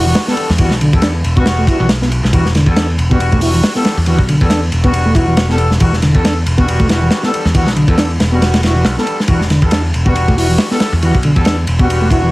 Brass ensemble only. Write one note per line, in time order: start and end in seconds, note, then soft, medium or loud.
0.00 0.25 G3 medium
0.00 0.25 B3 medium
0.00 0.25 D4 medium
0.00 0.25 F#4 medium
0.28 0.48 G3 loud
0.28 0.48 B3 medium
0.28 0.48 D4 medium
0.28 0.48 A4 loud
0.59 0.73 G3 medium
0.59 0.73 B3 medium
0.59 0.73 D4 medium
0.59 0.73 F#4 medium
0.93 1.14 G3 medium
0.93 1.14 B3 medium
0.93 1.14 D4 medium
0.93 1.14 A4 medium
1.37 1.66 G3 medium
1.37 1.66 B3 medium
1.37 1.66 D4 medium
1.37 1.66 F#4 loud
1.68 1.89 G3 medium
1.68 1.89 B3 medium
1.68 1.89 D4 medium
1.68 1.89 F#4 medium
2.33 2.47 G3 medium
2.33 2.47 B3 medium
2.33 2.47 D4 medium
2.33 2.47 F#4 medium
2.67 2.88 G3 medium
2.67 2.88 B3 medium
2.67 2.88 D4 medium
2.67 2.88 A4 medium
3.10 3.40 G3 medium
3.10 3.40 B3 medium
3.10 3.40 D4 medium
3.10 3.40 F#4 loud
3.42 3.73 G3 medium
3.42 3.73 B3 medium
3.42 3.73 D4 medium
3.42 3.73 F#4 medium
3.75 3.96 G3 medium
3.75 3.96 B3 medium
3.75 3.96 D4 medium
3.75 3.96 A4 loud
4.07 4.21 G3 medium
4.07 4.21 B3 medium
4.07 4.21 D4 medium
4.07 4.21 F#4 medium
4.41 4.61 G3 medium
4.41 4.61 B3 medium
4.41 4.61 D4 medium
4.41 4.61 A4 medium
4.84 5.14 G3 medium
4.84 5.14 B3 medium
4.84 5.14 D4 medium
4.84 5.14 F#4 loud
5.15 5.46 G3 medium
5.15 5.46 B3 medium
5.15 5.46 D4 medium
5.15 5.46 F#4 medium
5.49 5.70 G3 medium
5.49 5.70 B3 medium
5.49 5.70 D4 medium
5.49 5.70 A4 loud
5.81 5.95 G3 medium
5.81 5.95 B3 medium
5.81 5.95 D4 medium
5.81 5.95 F#4 medium
6.15 6.35 G3 medium
6.15 6.35 B3 medium
6.15 6.35 D4 medium
6.15 6.35 A4 medium
6.58 6.88 G3 medium
6.58 6.88 B3 medium
6.58 6.88 D4 medium
6.58 6.88 F#4 loud
6.89 7.21 G3 medium
6.89 7.21 B3 medium
6.89 7.20 D4 medium
6.89 7.20 F#4 medium
7.24 7.44 G3 medium
7.24 7.44 B3 medium
7.24 7.44 D4 medium
7.24 7.44 A4 loud
7.55 7.69 G3 medium
7.55 7.69 B3 medium
7.55 7.69 D4 medium
7.55 7.69 F#4 medium
7.89 8.09 G3 medium
7.89 8.09 B3 medium
7.89 8.09 D4 medium
7.89 8.09 A4 medium
8.32 8.62 G3 medium
8.32 8.62 B3 medium
8.32 8.62 D4 medium
8.32 8.61 F#4 loud
8.63 8.94 G3 medium
8.63 8.94 B3 medium
8.63 8.94 D4 medium
8.63 8.94 F#4 medium
8.97 9.18 G3 medium
8.97 9.18 B3 medium
8.97 9.18 D4 medium
8.97 9.18 A4 loud
9.29 9.43 G3 medium
9.29 9.43 B3 medium
9.29 9.43 D4 medium
9.29 9.43 F#4 medium
9.63 9.83 G3 medium
9.63 9.83 B3 medium
9.63 9.83 D4 medium
9.63 9.83 A4 medium
10.06 10.35 G3 medium
10.06 10.35 B3 medium
10.06 10.36 D4 medium
10.06 10.36 F#4 loud
10.37 10.68 G3 medium
10.37 10.68 B3 medium
10.37 10.68 D4 medium
10.37 10.68 F#4 medium
10.71 10.92 G3 loud
10.71 10.92 B3 medium
10.71 10.92 D4 medium
10.71 10.92 A4 loud
11.02 11.16 G3 medium
11.02 11.16 B3 medium
11.02 11.16 D4 medium
11.02 11.16 F#4 medium
11.36 11.57 G3 medium
11.36 11.57 B3 medium
11.36 11.57 D4 medium
11.36 11.57 A4 medium
11.80 12.09 G3 medium
11.80 12.09 B3 medium
11.80 12.09 D4 medium
11.80 12.09 F#4 loud
12.11 12.32 G3 medium
12.11 12.32 B3 medium
12.11 12.32 D4 medium
12.11 12.32 F#4 medium